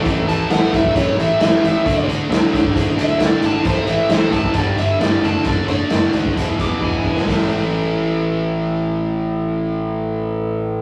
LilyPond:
<<
  \new Staff \with { instrumentName = "Lead electric guitar" } { \time 4/4 \key d \major \tempo 4 = 133 r8 a''8 fis''8 e''8 cis''8 e''4.~ | e''8 r2 e''8 d''8 a''8 | c''8 e''8 c''8 a''8 d''8 e''8 d''8 a''8 | d''8 d''4 r4 d'''8 gis''4 |
r1 | r1 | }
  \new Staff \with { instrumentName = "Distorted electric guitar" } { \clef bass \time 4/4 \key d \major <a, e a>8 <a, e a>8 <a, e a>8 <a, e a>8 <a, e a>8 <a, e a>8 <a, e a>8 <a, e a>8 | <d a d'>8 <d a d'>8 <d a d'>8 <d a d'>8 <d a d'>8 <d a d'>8 <d a d'>8 <d a d'>8 | <a, e a>8 <a, e a>8 <a, e a>8 <a, e a>8 <g, d g>8 <g, d g>8 <g, d g>8 <d a d'>8 | <d a d'>8 <d a d'>8 <d a d'>8 <d a d'>8 <e, b, e>8 <e, b, e>8 <e, b, e>8 <e, b, e>8 |
<a, e a>1~ | <a, e a>1 | }
  \new Staff \with { instrumentName = "Overdriven electric guitar" } { \clef bass \time 4/4 \key d \major <a, e a>8 <a, e a>8 <a, e a>8 <a, e a>8 <a, e a>8 <a, e a>8 <a, e a>8 <a, e a>8 | <d a d'>8 <d a d'>8 <d a d'>8 <d a d'>8 <d a d'>8 <d a d'>8 <d a d'>8 <d a d'>8 | <a, e a>8 <a, e a>8 <a, e a>8 <a, e a>8 <g, d g>8 <g, d g>8 <g, d g>8 <d a d'>8 | <d a d'>8 <d a d'>8 <d a d'>8 <d a d'>8 <e, b, e>8 <e, b, e>8 <e, b, e>8 <e, b, e>8 |
<a, e a>1~ | <a, e a>1 | }
  \new Staff \with { instrumentName = "Fingered electric bass" } { \clef bass \time 4/4 \key d \major a,,8 a,,8 a,,8 a,,8 a,,8 a,,8 a,,8 a,,8 | d,8 d,8 d,8 a,8 d,8 d,8 d,8 gis,,8 | a,,8 a,,8 a,,8 a,,8 g,,8 g,,8 g,,8 fis,,8 | fis,,8 fis,,8 fis,,8 d,8 e,,8 e,,8 e,,8 e,,8 |
a,,1~ | a,,1 | }
  \new DrumStaff \with { instrumentName = "Drums" } \drummode { \time 4/4 <hh bd>8 hh8 <hh sn>8 <hh bd>16 bd16 <hh bd>8 hh8 <hh sn>8 hh8 | <hh bd>8 hh8 <hh sn>8 <hh bd>16 bd16 <hh bd>8 <hh sn>8 <hh sn>8 hh8 | <hh bd>8 hh8 <hh sn>8 <hh bd>16 bd16 <hh bd>8 hh8 <hh sn>8 hh8 | <hh bd>8 hh8 <hh sn>8 hh16 bd16 <hh bd>8 <hh bd>8 bd16 bd16 bd16 sn16 |
<hho bd sn>4 r4 r4 r4 | r4 r4 r4 r4 | }
>>